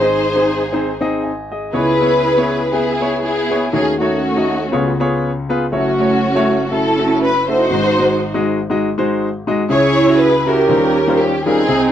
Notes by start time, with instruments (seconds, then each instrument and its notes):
Already playing: grand piano G#1 G#2
0.00 grand piano C4 D#4 G#4 D#5, string section D#4 G#4 C5
0.36 grand piano C4 D#4 G#4 C5
0.73 grand piano C4 D#4 G#4 C5
1.01 grand piano C4 D#4 G#4 D#5
1.23 grand piano D#5 G#5
1.52 grand piano G#4 D#5
1.73 grand piano C#2 C#3 B3 E4 G#4 C#5, string section E4 G#4 B4
2.01 grand piano B3 E4 G#4 C#5
2.37 grand piano B3 E4 G#4 C#5
2.73 grand piano B3 E4 G#4 B4, string section B3 E4 G#4
3.01 grand piano B3 E4 G#4 C#5
3.22 string section B3 E4 G#4
3.50 grand piano B3 E4 G#4 C#5
3.72 grand piano D#2 D#3 A3 D#4 F#4 C#5, string section C#4 G#4
4.00 grand piano A3 D#4 F#4 C#5, string section A3 C#4 F#4
4.37 grand piano A3 D#4 F#4 D#5
4.72 grand piano C#2 C#3 B3 F4 G#4 C#5
5.00 grand piano B3 F4 G#4 C#5
5.49 grand piano B3 F4 G#4 B4
5.72 grand piano F#1 F#2 A3 E4 F#4 C#5, string section A3 C#4 F#4
6.00 grand piano A3 E4 F#4 C#5
6.35 grand piano A3 E4 F#4 C#5
6.71 grand piano A3 E4 F#4 A4, string section C#4 E4 A4
6.99 grand piano A3 E4 F#4 A4
7.23 string section B4
7.48 grand piano A3 E4 F#4 A4, string section D#4 F#4 C5
7.70 grand piano G#1 G#2 G#3 D#4 F#4 C5
7.98 grand piano G#3 D#4 F#4 C5
8.34 grand piano G#3 D#4 F#4 D#5
8.70 grand piano G#3 D#4 F#4 D#5
8.98 grand piano G#3 D#4 F#4 C5
9.47 grand piano G#3 D#4 F#4 D#5
9.69 grand piano C#2 C#3 C#4 E4 G#4, string section E4 G#4 C#5
10.08 grand piano C#4 E4 F#4
10.19 string section B4
10.46 grand piano C#4 E4 F#4, string section C#4 G4 A#4
10.68 grand piano D#2 D#3 G3 C#4 D#4 F4 C5
11.07 grand piano G3 C#4 D#4 F4 C5
11.19 string section G4
11.46 grand piano G3 C#4 D#4 F4 A#4, string section C4 D#4 G#4
11.68 grand piano C2 C3 C4 D#4 G#4